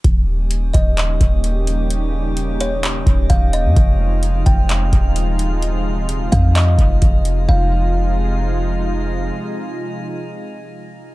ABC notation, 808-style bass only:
X:1
M:4/4
L:1/16
Q:1/4=129
K:Fm
V:1 name="808-style bass" clef=bass
E,,,6 E,,,4 E,,,6- | E,,,8- E,,,2 E,,,2 E,,,3 G,, | F,,,6 F,,,4 E,,,6- | E,,,6 F,,4 F,,,2 F,,,4 |
F,,,16 | z16 |]